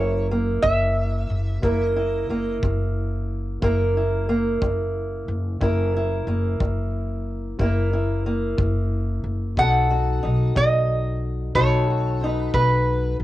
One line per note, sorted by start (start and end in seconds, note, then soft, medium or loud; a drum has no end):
0.00 0.59 F#1 medium
0.00 0.24 F#2 medium
0.00 0.31 A#3 medium
0.00 1.63 E4 soft
0.00 1.64 A#4 medium
0.00 0.26 C#5 medium
0.31 1.63 A#3 medium
0.62 1.25 F#1 medium
0.62 1.23 F#2 medium
0.62 1.86 E5 medium
0.62 kick medium
1.30 1.60 F#1 medium
1.62 2.25 F#1 medium
1.62 2.22 F#2 medium
1.62 2.30 A#3 medium
1.62 1.96 E4 medium
1.62 3.64 A#4 medium
1.62 kick medium
1.86 2.58 D#5 medium
1.96 3.63 E4 soft
2.29 2.60 F#1 medium
2.29 3.62 A#3 medium
2.63 3.58 F#1 medium
2.63 3.22 F#2 medium
2.63 kick medium
3.62 4.57 F#1 medium
3.62 4.21 F#2 medium
3.62 4.28 A#3 medium
3.62 3.96 E4 medium
3.62 5.58 A#4 medium
3.62 kick medium
3.97 5.58 E4 medium
4.29 5.60 A#3 medium
4.62 5.24 F#1 medium
4.62 5.21 F#2 medium
4.62 kick medium
5.28 5.58 F#1 medium
5.60 6.23 F#1 medium
5.60 6.20 F#2 medium
5.60 6.27 A#3 soft
5.60 5.94 E4 medium
5.60 7.60 A#4 medium
5.60 kick medium
5.96 7.60 E4 medium
6.27 6.58 F#1 medium
6.27 7.58 A#3 medium
6.60 7.55 F#1 medium
6.60 7.20 F#2 medium
6.60 kick medium
7.59 8.54 F#1 medium
7.59 8.18 F#2 medium
7.59 8.25 A#3 medium
7.59 7.92 E4 medium
7.59 9.55 A#4 medium
7.59 kick medium
7.93 9.54 E4 soft
8.26 9.58 A#3 medium
8.58 9.21 F#1 medium
8.58 9.18 F#2 medium
8.58 kick medium
9.24 9.55 F#1 medium
9.57 10.19 B1 medium
9.57 10.17 B2 medium
9.57 10.22 D#4 medium
9.57 9.90 F#4 medium
9.57 11.57 A4 medium
9.57 10.53 F#5 loud
9.57 kick medium
9.90 11.56 F#4 medium
10.23 10.55 B1 medium
10.23 11.55 D#4 medium
10.55 11.51 B1 medium
10.55 11.15 B2 medium
10.55 11.55 D#5 medium
10.55 kick medium
11.55 12.50 B1 medium
11.55 12.15 B2 medium
11.55 12.22 D#4 medium
11.55 11.90 F#4 medium
11.55 13.24 A4 medium
11.55 12.27 C#5 medium
11.55 kick medium
11.90 13.24 F#4 soft
12.24 13.24 D#4 medium
12.24 12.54 B4 medium
12.54 13.16 B1 medium
12.54 13.14 B2 medium
12.54 13.16 B4 medium
12.54 kick medium
13.20 13.24 B1 medium